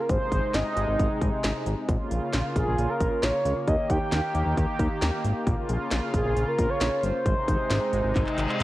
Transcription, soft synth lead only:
0, 0, Header, 1, 2, 480
1, 0, Start_track
1, 0, Tempo, 447761
1, 102, Time_signature, 4, 2, 24, 8
1, 9252, End_track
2, 0, Start_track
2, 0, Title_t, "Soft synth lead"
2, 0, Program_c, 0, 80
2, 5, Note_on_c, 0, 70, 74
2, 97, Note_off_c, 0, 70, 0
2, 103, Note_on_c, 0, 72, 104
2, 580, Note_on_c, 0, 75, 104
2, 596, Note_off_c, 0, 72, 0
2, 1781, Note_off_c, 0, 75, 0
2, 2743, Note_on_c, 0, 68, 92
2, 3103, Note_on_c, 0, 70, 92
2, 3119, Note_off_c, 0, 68, 0
2, 3462, Note_on_c, 0, 73, 94
2, 3478, Note_off_c, 0, 70, 0
2, 3943, Note_on_c, 0, 75, 100
2, 3959, Note_off_c, 0, 73, 0
2, 4186, Note_on_c, 0, 79, 103
2, 4202, Note_off_c, 0, 75, 0
2, 4904, Note_off_c, 0, 79, 0
2, 6583, Note_on_c, 0, 68, 100
2, 6917, Note_off_c, 0, 68, 0
2, 6940, Note_on_c, 0, 70, 94
2, 7180, Note_on_c, 0, 73, 105
2, 7196, Note_off_c, 0, 70, 0
2, 7541, Note_on_c, 0, 72, 114
2, 7557, Note_off_c, 0, 73, 0
2, 9222, Note_off_c, 0, 72, 0
2, 9252, End_track
0, 0, End_of_file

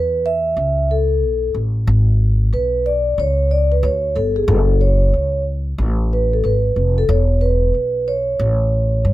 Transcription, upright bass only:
0, 0, Header, 1, 2, 480
1, 0, Start_track
1, 0, Key_signature, 3, "major"
1, 0, Tempo, 652174
1, 1378, Time_signature, 4, 2, 24, 8
1, 6723, End_track
2, 0, Start_track
2, 0, Title_t, "Upright bass"
2, 0, Program_c, 0, 32
2, 0, Note_on_c, 0, 40, 79
2, 391, Note_off_c, 0, 40, 0
2, 416, Note_on_c, 0, 37, 94
2, 898, Note_off_c, 0, 37, 0
2, 898, Note_on_c, 0, 35, 84
2, 1126, Note_off_c, 0, 35, 0
2, 1137, Note_on_c, 0, 33, 90
2, 1366, Note_off_c, 0, 33, 0
2, 1380, Note_on_c, 0, 32, 126
2, 1835, Note_off_c, 0, 32, 0
2, 1859, Note_on_c, 0, 35, 86
2, 2314, Note_off_c, 0, 35, 0
2, 2339, Note_on_c, 0, 37, 104
2, 2795, Note_off_c, 0, 37, 0
2, 2818, Note_on_c, 0, 38, 108
2, 3046, Note_off_c, 0, 38, 0
2, 3061, Note_on_c, 0, 31, 93
2, 3287, Note_off_c, 0, 31, 0
2, 3296, Note_on_c, 0, 30, 127
2, 3753, Note_off_c, 0, 30, 0
2, 4257, Note_on_c, 0, 33, 112
2, 4713, Note_off_c, 0, 33, 0
2, 4736, Note_on_c, 0, 32, 89
2, 4965, Note_off_c, 0, 32, 0
2, 4976, Note_on_c, 0, 29, 87
2, 5205, Note_off_c, 0, 29, 0
2, 5216, Note_on_c, 0, 28, 118
2, 5673, Note_off_c, 0, 28, 0
2, 6179, Note_on_c, 0, 33, 112
2, 6634, Note_off_c, 0, 33, 0
2, 6658, Note_on_c, 0, 43, 98
2, 6723, Note_off_c, 0, 43, 0
2, 6723, End_track
0, 0, End_of_file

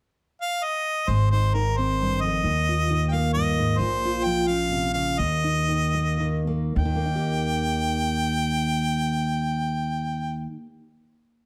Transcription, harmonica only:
0, 0, Header, 1, 2, 480
1, 0, Start_track
1, 0, Tempo, 452489
1, 1153, Time_signature, 3, 2, 24, 8
1, 4511, Tempo, 478469
1, 5951, Tempo, 539084
1, 6911, Tempo, 575816
1, 10821, End_track
2, 0, Start_track
2, 0, Title_t, "Harmonica"
2, 0, Program_c, 0, 22
2, 437, Note_on_c, 0, 77, 72
2, 671, Note_on_c, 0, 75, 66
2, 687, Note_off_c, 0, 77, 0
2, 1160, Note_on_c, 0, 72, 59
2, 1176, Note_off_c, 0, 75, 0
2, 1381, Note_off_c, 0, 72, 0
2, 1387, Note_on_c, 0, 72, 67
2, 1633, Note_on_c, 0, 70, 62
2, 1649, Note_off_c, 0, 72, 0
2, 1877, Note_on_c, 0, 72, 68
2, 1893, Note_off_c, 0, 70, 0
2, 2346, Note_on_c, 0, 75, 77
2, 2362, Note_off_c, 0, 72, 0
2, 3248, Note_off_c, 0, 75, 0
2, 3272, Note_on_c, 0, 79, 49
2, 3307, Note_on_c, 0, 77, 74
2, 3323, Note_off_c, 0, 79, 0
2, 3532, Note_off_c, 0, 77, 0
2, 3539, Note_on_c, 0, 75, 74
2, 4010, Note_on_c, 0, 72, 80
2, 4026, Note_off_c, 0, 75, 0
2, 4502, Note_on_c, 0, 79, 84
2, 4517, Note_off_c, 0, 72, 0
2, 4733, Note_on_c, 0, 77, 85
2, 4748, Note_off_c, 0, 79, 0
2, 5189, Note_off_c, 0, 77, 0
2, 5195, Note_on_c, 0, 77, 78
2, 5447, Note_on_c, 0, 75, 75
2, 5462, Note_off_c, 0, 77, 0
2, 6656, Note_off_c, 0, 75, 0
2, 6913, Note_on_c, 0, 79, 70
2, 9969, Note_off_c, 0, 79, 0
2, 10821, End_track
0, 0, End_of_file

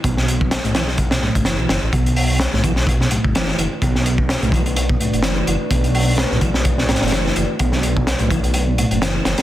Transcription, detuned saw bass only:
0, 0, Header, 1, 2, 480
1, 0, Start_track
1, 0, Tempo, 472441
1, 41, Time_signature, 4, 2, 24, 8
1, 9572, End_track
2, 0, Start_track
2, 0, Title_t, "Detuned saw bass"
2, 0, Program_c, 0, 39
2, 42, Note_on_c, 0, 35, 97
2, 593, Note_off_c, 0, 35, 0
2, 655, Note_on_c, 0, 35, 101
2, 1314, Note_off_c, 0, 35, 0
2, 1376, Note_on_c, 0, 30, 89
2, 1609, Note_off_c, 0, 30, 0
2, 1615, Note_on_c, 0, 35, 90
2, 1691, Note_off_c, 0, 35, 0
2, 1721, Note_on_c, 0, 30, 94
2, 1816, Note_off_c, 0, 30, 0
2, 1856, Note_on_c, 0, 33, 94
2, 1931, Note_off_c, 0, 33, 0
2, 1959, Note_on_c, 0, 35, 103
2, 2512, Note_off_c, 0, 35, 0
2, 2574, Note_on_c, 0, 35, 97
2, 3233, Note_off_c, 0, 35, 0
2, 3297, Note_on_c, 0, 30, 88
2, 3593, Note_off_c, 0, 30, 0
2, 3641, Note_on_c, 0, 30, 79
2, 3736, Note_off_c, 0, 30, 0
2, 3880, Note_on_c, 0, 35, 98
2, 4432, Note_off_c, 0, 35, 0
2, 4493, Note_on_c, 0, 35, 95
2, 5153, Note_off_c, 0, 35, 0
2, 5215, Note_on_c, 0, 30, 84
2, 5512, Note_off_c, 0, 30, 0
2, 5564, Note_on_c, 0, 30, 77
2, 5657, Note_off_c, 0, 30, 0
2, 5797, Note_on_c, 0, 35, 101
2, 6351, Note_off_c, 0, 35, 0
2, 6414, Note_on_c, 0, 35, 97
2, 7073, Note_off_c, 0, 35, 0
2, 7135, Note_on_c, 0, 30, 91
2, 7433, Note_off_c, 0, 30, 0
2, 7484, Note_on_c, 0, 30, 81
2, 7577, Note_off_c, 0, 30, 0
2, 7723, Note_on_c, 0, 35, 99
2, 8274, Note_off_c, 0, 35, 0
2, 8334, Note_on_c, 0, 35, 98
2, 8993, Note_off_c, 0, 35, 0
2, 9055, Note_on_c, 0, 30, 91
2, 9352, Note_off_c, 0, 30, 0
2, 9401, Note_on_c, 0, 30, 84
2, 9496, Note_off_c, 0, 30, 0
2, 9572, End_track
0, 0, End_of_file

